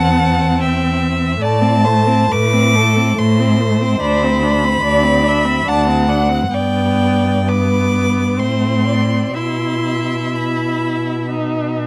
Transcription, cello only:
0.00 1.40 E2 medium
1.40 2.21 A2 medium
2.32 3.09 A2 medium
3.18 3.92 A2 medium
4.00 4.74 D2 medium
4.82 5.57 D2 medium
5.67 6.42 D2 medium
6.53 8.41 G2 medium
8.39 9.35 A2 medium
9.36 11.87 B2 medium

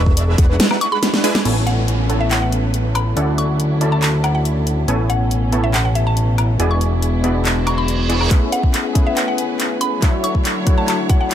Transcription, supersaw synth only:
0.00 0.36 G#3 loud
0.00 0.36 D4 medium
0.00 0.36 E4 medium
0.00 0.36 B4 medium
0.00 0.36 E5 loud
0.38 1.22 G#3 medium
0.38 1.22 E4 medium
0.38 1.22 F#5 medium
1.24 1.43 G#3 medium
1.24 1.43 D4 medium
1.24 1.43 E4 medium
1.24 1.43 B4 medium
1.24 1.43 G#5 medium
1.45 2.07 B3 medium
1.45 2.07 E4 medium
1.45 2.07 A4 medium
1.45 2.07 C#5 medium
1.45 2.07 G#5 loud
2.10 3.14 B3 medium
2.10 3.14 E4 medium
2.10 3.14 A4 medium
2.10 3.14 C#5 medium
2.10 3.14 A5 medium
3.17 3.79 C#4 medium
3.17 3.78 E4 medium
3.17 3.78 A4 medium
3.17 3.79 D5 medium
3.17 3.78 F#5 loud
3.81 4.86 C#4 medium
3.81 4.86 E4 medium
3.81 4.86 A4 medium
3.81 4.86 D5 medium
3.81 4.86 A5 medium
4.88 5.50 B3 medium
4.88 5.50 E4 medium
4.88 5.50 A4 medium
4.88 5.50 C#5 medium
4.88 5.50 G#5 loud
5.52 6.57 B3 medium
5.52 6.57 E4 medium
5.52 6.57 A4 medium
5.52 6.57 C#5 medium
5.52 6.57 A5 medium
6.60 7.21 B3 medium
6.60 7.21 E4 medium
6.60 7.21 G#4 medium
6.60 7.21 D5 medium
6.60 7.21 G#5 loud
7.24 8.07 B3 medium
7.24 8.07 E4 medium
7.24 8.07 G#4 medium
7.24 8.07 D5 medium
7.24 8.07 B5 medium
8.09 8.28 B3 medium
8.09 8.28 E4 medium
8.09 8.28 G#4 medium
8.09 8.28 D5 medium
8.09 8.28 C#6 medium
8.31 8.93 A3 medium
8.31 8.93 C#4 medium
8.31 8.93 B4 medium
8.95 10.00 A3 medium
8.95 10.00 C#4 medium
8.95 10.00 G#4 medium
8.95 10.00 B4 medium
8.95 10.00 F#5 medium
10.02 10.64 A3 medium
10.02 10.64 D4 medium
10.02 10.64 F#4 medium
10.02 10.64 C#5 medium
10.02 10.64 E5 loud
10.67 11.34 A3 medium
10.67 11.34 D4 medium
10.67 11.34 F#4 medium
10.67 11.34 C#5 medium
10.67 11.34 F#5 medium

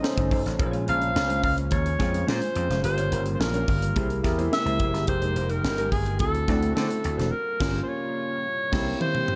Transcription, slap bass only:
0.18 0.29 G1 medium
0.31 0.43 G1 medium
0.46 0.57 A1 medium
0.59 0.83 A#1 loud
0.88 1.11 A#1 loud
1.16 1.39 C#2 medium
1.44 1.71 C#2 medium
1.71 1.95 D#2 medium
2.00 2.23 F2 loud
2.28 2.40 A#2 loud
2.56 2.67 F2 medium
2.70 2.81 F1 medium
2.84 3.07 G1 medium
3.12 3.35 G1 loud
3.40 3.63 A#1 medium
3.68 3.91 G1 medium
3.96 4.19 C2 medium
4.25 4.47 E2 medium
4.66 4.77 C#2 medium
4.80 4.93 F1 loud
4.93 5.05 G1 medium
5.08 5.31 F1 loud
5.36 5.59 F1 loud
5.64 5.87 G1 medium
5.92 6.22 G1 medium
6.20 6.43 D2 loud
6.48 6.72 D2 medium
6.77 6.88 D3 loud
7.05 7.16 D2 loud
7.19 7.30 E1 medium
7.61 7.80 G1 loud
8.73 8.92 C2 loud

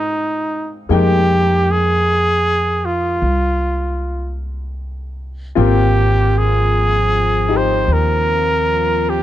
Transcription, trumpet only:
0.00 0.75 D#4 medium
0.93 1.73 G4 medium
1.71 2.87 G#4 medium
2.85 4.40 F4 medium
5.59 6.39 G4 medium
6.38 7.58 G#4 medium
7.57 7.94 C5 medium
7.93 9.11 A#4 medium
9.10 9.23 G4 medium

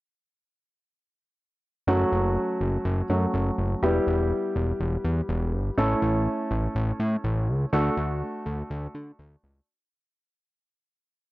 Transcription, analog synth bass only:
1.87 2.05 F#1 loud
2.12 2.37 F#1 medium
2.61 2.78 F#1 medium
2.85 3.02 F#1 loud
3.10 3.27 F#2 medium
3.34 3.51 F#1 loud
3.58 3.75 F#1 medium
3.83 4.00 E1 loud
4.07 4.33 E1 medium
4.56 4.73 E1 loud
4.80 4.97 E1 loud
5.04 5.22 E2 loud
5.29 5.55 E1 loud
5.53 5.70 G1 medium
5.78 5.95 A1 loud
6.02 6.28 A1 medium
6.51 6.68 A1 loud
6.75 6.92 A1 loud
7.00 7.17 A2 loud
7.24 7.50 A1 loud
7.48 7.66 C#2 medium
7.73 7.90 D2 loud
7.97 8.23 D2 loud
8.46 8.63 D2 medium
8.70 8.87 D2 loud
8.95 9.12 D3 medium
9.19 9.36 D2 loud
9.44 9.61 C#2 medium

